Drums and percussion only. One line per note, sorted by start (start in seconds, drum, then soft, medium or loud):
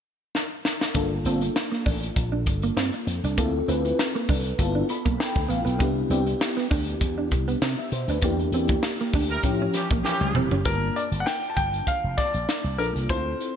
0.35 snare medium
0.65 snare medium
0.81 snare loud
0.94 kick loud
0.94 closed hi-hat medium
1.25 closed hi-hat medium
1.41 closed hi-hat soft
1.56 snare loud
1.56 closed hi-hat medium
1.73 snare soft
1.86 kick medium
1.86 open hi-hat medium
2.03 closed hi-hat medium
2.16 kick medium
2.16 closed hi-hat medium
2.46 kick medium
2.46 closed hi-hat medium
2.62 closed hi-hat medium
2.77 snare loud
2.77 closed hi-hat medium
2.94 closed hi-hat soft
3.07 closed hi-hat medium
3.24 closed hi-hat medium
3.38 kick loud
3.38 closed hi-hat medium
3.69 closed hi-hat medium
3.85 closed hi-hat soft
3.99 snare loud
3.99 closed hi-hat medium
4.16 closed hi-hat soft
4.29 kick loud
4.29 open hi-hat medium
4.46 closed hi-hat soft
4.59 kick medium
4.59 closed hi-hat medium
4.89 closed hi-hat medium
5.05 kick medium
5.05 closed hi-hat medium
5.20 snare loud
5.20 closed hi-hat medium
5.36 kick medium
5.50 closed hi-hat medium
5.66 closed hi-hat medium
5.80 kick loud
5.80 closed hi-hat medium
6.11 closed hi-hat medium
6.27 closed hi-hat soft
6.41 snare loud
6.41 closed hi-hat loud
6.58 snare soft
6.58 closed hi-hat soft
6.71 kick loud
6.71 open hi-hat medium
6.88 closed hi-hat soft
7.01 kick medium
7.01 closed hi-hat medium
7.31 kick loud
7.31 closed hi-hat medium
7.48 closed hi-hat medium
7.62 snare loud
7.62 closed hi-hat medium
7.92 closed hi-hat medium
8.08 closed hi-hat soft
8.22 kick loud
8.22 closed hi-hat medium
8.39 closed hi-hat soft
8.52 closed hi-hat medium
8.68 kick medium
8.68 closed hi-hat soft
8.83 snare loud
8.83 closed hi-hat medium
9.00 snare soft
9.13 kick medium
9.13 open hi-hat medium
9.29 closed hi-hat soft
9.43 kick medium
9.43 closed hi-hat medium
9.74 snare soft
9.74 closed hi-hat medium
9.90 kick medium
9.90 closed hi-hat medium
10.05 snare medium
10.21 high tom medium
10.35 mid tom medium
10.51 floor tom medium
10.65 kick medium
10.65 closed hi-hat medium
10.96 closed hi-hat medium
11.12 closed hi-hat soft
11.27 snare medium
11.27 closed hi-hat medium
11.43 closed hi-hat soft
11.57 kick medium
11.57 closed hi-hat medium
11.73 closed hi-hat soft
11.87 kick medium
11.87 closed hi-hat medium
12.18 kick medium
12.18 snare soft
12.18 closed hi-hat medium
12.34 closed hi-hat soft
12.49 snare medium
12.49 closed hi-hat medium
12.65 closed hi-hat soft
12.79 closed hi-hat medium
12.96 closed hi-hat soft
13.09 kick medium
13.09 closed hi-hat medium
13.41 closed hi-hat medium